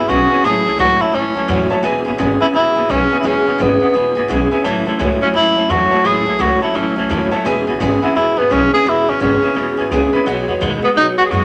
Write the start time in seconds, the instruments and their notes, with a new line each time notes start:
Already playing: tenor saxophone E4
0.09 upright bass B1, clean electric guitar E2 C#3, steel-string acoustic guitar E3 B3 C#4 G#4, tenor saxophone F#4, upright piano B4 E5 G#5
0.30 clean electric guitar E2 C#3, steel-string acoustic guitar B3 C#4 G#4, upright piano B4 E5 G#5, muted upright bass stroke
0.44 upright bass A1, clean electric guitar A2 E3, steel-string acoustic guitar A2 E3 F#3 A3 C#4 F#4, tenor saxophone G#4, upright piano C#5 E5 A5
0.65 upright bass C#2, clean electric guitar A2 E3, steel-string acoustic guitar F#3 A3 C#4 F#4, upright piano C#5 E5 A5
0.78 upright bass C#2, steel-string acoustic guitar A2 E3 F#3 A3 C#4 F#4, clean electric guitar A2 F#3, tenor saxophone F#4, upright piano C#5 E5 A5
0.99 clean electric guitar A2 F#3, steel-string acoustic guitar F#3 A3 C#4 F#4, tenor saxophone E4, upright piano C#5 E5 A5, muted upright bass stroke
1.12 upright bass A1, clean electric guitar A2 E3, steel-string acoustic guitar F#3 A3 C#4 F#4, tenor saxophone C#4, upright piano C#5 E5
1.34 upright bass C#2, clean electric guitar A2 E3, steel-string acoustic guitar F#3 A3 C#4 F#4, upright piano C#5 E5 A5
1.48 upright bass E2, steel-string acoustic guitar A2 E3 F#3 A3 C#4 F#4, clean electric guitar A2 F#3, upright piano C#5 F#5
1.70 clean electric guitar A2 F#3, steel-string acoustic guitar F#3 A3 C#4 F#4, upright piano C#5 E5 A5, muted upright bass stroke
1.83 upright bass E1, clean electric guitar E2 B2, steel-string acoustic guitar E3 G#3 B3 C#4 G#4, upright piano B4 E5 G#5
2.05 upright bass A1, clean electric guitar E2 B2, steel-string acoustic guitar B3 C#4 G#4, upright piano B4 E5 G#5
2.18 upright bass G#1, clean electric guitar E2 C#3, steel-string acoustic guitar E3 G#3 B3 C#4 G#4, upright piano B4 E5 G#5
2.40 clean electric guitar E2 C#3, steel-string acoustic guitar B3 C#4 G#4, tenor saxophone E4, upright piano B4 E5 G#5, muted upright bass stroke
2.54 upright bass E1, clean electric guitar E2 B2, steel-string acoustic guitar G#3 B3 C#4 G#4, tenor saxophone E4, upright piano B4 G#5
2.75 upright bass G#1, clean electric guitar E2 B2, steel-string acoustic guitar B3 C#4 G#4, upright piano B4 E5 G#5
2.89 upright bass B1, clean electric guitar E2 C#3, steel-string acoustic guitar E3 G#3 B3 C#4 G#4, tenor saxophone C#4, upright piano B4 E5 G#5
3.10 clean electric guitar E2 C#3, steel-string acoustic guitar B3 C#4 G#4, upright piano B4 E5 G#5, muted upright bass stroke
3.20 steel-string acoustic guitar E3 G#3, tenor saxophone E4
3.24 upright bass E1, clean electric guitar E2 B2, steel-string acoustic guitar B3 C#4 G#4, tenor saxophone C#4, upright piano B4 E5 G#5
3.45 upright bass A1, clean electric guitar E2 B2, steel-string acoustic guitar B3 C#4 G#4, upright piano B4 E5 G#5
3.58 upright bass G#1, clean electric guitar E2 C#3, steel-string acoustic guitar E3 G#3 B3 C#4 G#4, tenor saxophone B3, upright piano B4 E5 G#5
3.80 clean electric guitar E2 C#3, steel-string acoustic guitar B3 C#4 G#4, upright piano B4 E5 F#5, muted upright bass stroke
3.94 upright bass E1, clean electric guitar E2 B2, steel-string acoustic guitar G#3 B3 C#4 G#4, upright piano B4 E5 G#5
4.15 upright bass G#1, clean electric guitar E2 B2, steel-string acoustic guitar B3 C#4 G#4, upright piano B4 E5 G#5
4.28 upright bass B1, clean electric guitar E2 C#3, steel-string acoustic guitar E3 G#3 B3 C#4 G#4, upright piano B4 E5 F#5
4.51 clean electric guitar E2 C#3, steel-string acoustic guitar B3 C#4 G#4, upright piano B4 E5 G#5, muted upright bass stroke
4.64 upright bass A1, steel-string acoustic guitar A2 E3 F#3 A3 C#4 F#4, clean electric guitar A2 E3, upright piano C#5 E5 A5
4.85 upright bass C#2, clean electric guitar A2 E3, steel-string acoustic guitar F#3 A3 C#4 F#4, upright piano C#5 E5 A5
4.99 upright bass C#2, steel-string acoustic guitar A2 E3 F#3 A3 C#4 F#4, clean electric guitar A2 F#3, upright piano C#5 E5 G#5
5.21 clean electric guitar A2 F#3, steel-string acoustic guitar F#3 A3 C#4 F#4, tenor saxophone C#4, upright piano C#5 E5 G#5, muted upright bass stroke
5.34 upright bass A1, clean electric guitar A2 E3, steel-string acoustic guitar F#3 A3 C#4 F#4, tenor saxophone E4, upright piano E5
5.55 upright bass C#2, clean electric guitar A2 E3, steel-string acoustic guitar F#3 A3 C#4 F#4, upright piano C#5 E5 A5
5.69 upright bass E2, steel-string acoustic guitar A2 E3 F#3 A3 C#4 F#4, clean electric guitar A2 F#3, tenor saxophone F#4, upright piano E5 A5
5.91 clean electric guitar A2 F#3, steel-string acoustic guitar F#3 A3 C#4 F#4, upright piano C#5 E5 A5, muted upright bass stroke
6.04 upright bass A1, steel-string acoustic guitar A2 E3 F#3 A3 C#4 F#4, clean electric guitar A2 E3, tenor saxophone G#4, upright piano C#5 E5 B5
6.26 upright bass C#2, clean electric guitar A2 E3, steel-string acoustic guitar F#3 A3 C#4 F#4, upright piano C#5 E5 A5
6.39 upright bass C#2, steel-string acoustic guitar A2 E3 F#3 A3 C#4 F#4, clean electric guitar A2 F#3, tenor saxophone F#4, upright piano C#5 B5
6.61 clean electric guitar A2 F#3, steel-string acoustic guitar F#3 A3 C#4 F#4, tenor saxophone E4, upright piano C#5 E5 A5, muted upright bass stroke
6.74 upright bass A1, clean electric guitar A2 E3, steel-string acoustic guitar F#3 A3 C#4 F#4, tenor saxophone C#4, upright piano E5
6.96 upright bass C#2, clean electric guitar A2 E3, steel-string acoustic guitar F#3 A3 C#4 F#4, upright piano C#5 E5 A5
7.09 upright bass D#2, steel-string acoustic guitar A2 E3 F#3 A3 C#4 F#4, clean electric guitar A2 F#3, upright piano C#5 E5 A5
7.31 clean electric guitar A2 F#3, steel-string acoustic guitar F#3 A3 C#4 F#4, upright piano C#5 E5 A5, muted upright bass stroke
7.45 upright bass E1, clean electric guitar E2 B2, steel-string acoustic guitar E3 G#3 B3 C#4 G#4, upright piano B4 E5 G#5
7.67 upright bass A1, clean electric guitar E2 B2, steel-string acoustic guitar B3 C#4 G#4, upright piano B4 E5 G#5
7.80 upright bass G#1, clean electric guitar E2 C#3, steel-string acoustic guitar E3 G#3 B3 C#4 G#4, upright piano B4 E5 G#5
8.02 clean electric guitar E2 C#3, steel-string acoustic guitar B3 C#4 G#4, tenor saxophone E4, upright piano B4 E5 F#5, muted upright bass stroke
8.15 upright bass E1, clean electric guitar E2 B2, steel-string acoustic guitar G#3 B3 C#4 G#4, tenor saxophone E4, upright piano B4 G#5
8.36 upright bass G#1, clean electric guitar E2 B2, tenor saxophone B3, steel-string acoustic guitar B3 C#4 G#4, upright piano B4 E5 B5
8.50 upright bass B1, clean electric guitar E2 C#3, steel-string acoustic guitar E3 G#3 B3 C#4 G#4, tenor saxophone C#4, upright piano B4 E5 G#5
8.72 clean electric guitar E2 C#3, steel-string acoustic guitar B3 C#4 G#4, tenor saxophone G#4, upright piano B4 E5 G#5, muted upright bass stroke
8.85 upright bass E1, clean electric guitar E2 B2, steel-string acoustic guitar E3 G#3 B3 C#4 G#4, tenor saxophone E4, upright piano B4 E5 B5
9.06 upright bass A1, clean electric guitar E2 B2, steel-string acoustic guitar B3 C#4 G#4, tenor saxophone C#4, upright piano B4 E5 G#5
9.20 upright bass G#1, clean electric guitar E2 C#3, steel-string acoustic guitar E3 G#3 B3 C#4 G#4, tenor saxophone C#4, upright piano B4 E5 G#5
9.42 clean electric guitar E2 C#3, steel-string acoustic guitar B3 C#4 G#4, upright piano B4 E5 G#5, muted upright bass stroke
9.55 upright bass E1, clean electric guitar E2 B2, steel-string acoustic guitar G#3 B3 C#4 G#4, upright piano E5 G#5
9.77 upright bass G#1, clean electric guitar E2 B2, steel-string acoustic guitar B3 C#4 G#4, upright piano B4 E5 G#5
9.91 upright bass C#2, clean electric guitar E2 C#3, steel-string acoustic guitar E3 G#3 B3 C#4 G#4, upright piano B4 E5 G#5
10.13 clean electric guitar E2 C#3, steel-string acoustic guitar B3 C#4 G#4, upright piano B4 E5 B5, muted upright bass stroke
10.26 upright bass B1, steel-string acoustic guitar B2 G#3 B3 D#4 F#4, clean electric guitar B2 F#3, upright piano B4 D#5 F#5
10.47 upright bass E2, clean electric guitar B2 F#3, steel-string acoustic guitar B3 D#4 F#4, upright piano B4 D#5 F#5
10.61 upright bass D#2, steel-string acoustic guitar B2 G#3 B3 D#4 F#4, clean electric guitar B2 G#3, upright piano B4 D#5 F#5
10.82 clean electric guitar B2 G#3, tenor saxophone B3, steel-string acoustic guitar B3 D#4 F#4, upright piano B4 D#5 F#5, muted upright bass stroke
10.96 upright bass B1, clean electric guitar B2 F#3, steel-string acoustic guitar G#3 B3 D#4 F#4, tenor saxophone D#4, upright piano B4 F#5
11.18 upright bass D#2, clean electric guitar B2 F#3, steel-string acoustic guitar B3 D#4 F#4, tenor saxophone F#4, upright piano B4 D#5 G#5
11.26 tenor saxophone G#4
11.30 upright bass F#2, clean electric guitar B2 G#3, steel-string acoustic guitar B2 G#3 B3 D#4 F#4, tenor saxophone F#4, upright piano B4 D#5 F#5